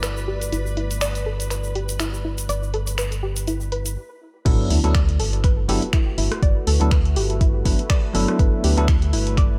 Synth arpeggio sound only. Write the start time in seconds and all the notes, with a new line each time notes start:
0.03 B4
0.28 G4
0.52 E4
0.77 E4
1.02 D5
1.26 A4
1.51 B4
1.75 G4
2.00 E4
2.25 E4
2.49 D5
2.74 A4
2.98 B4
3.23 G4
3.48 E4
3.72 B4
4.46 E4
4.70 E4
4.95 D5
5.20 A4
5.44 B4
5.69 G4
5.93 E4
6.18 E4
6.43 D5
6.67 A4
6.92 B4
7.16 G4
7.41 E4
7.66 E4
7.90 D5
8.15 A4
8.39 B4
8.64 G4
8.89 E4
9.13 E4
9.38 D5